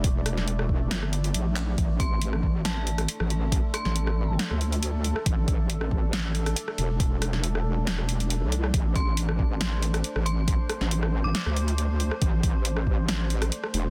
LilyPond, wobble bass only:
\new Staff \with { instrumentName = "Wobble bass" } { \clef bass \time 4/4 \key a \minor \tempo 4 = 138 e,,2 g,,4 bes,,4 | a,,2. r16 a,,8.~ | a,,16 r8 a,,4 a,,16 r16 d,4. r16 | a,,8 a,,2~ a,,8 r8 e,,8~ |
e,,2.~ e,,16 c,8. | a,,2. r16 a,,8.~ | a,,16 r8 a,,4 a,,16 r16 d,4. r16 | a,,8 a,,2~ a,,8 r8 e,,8 | }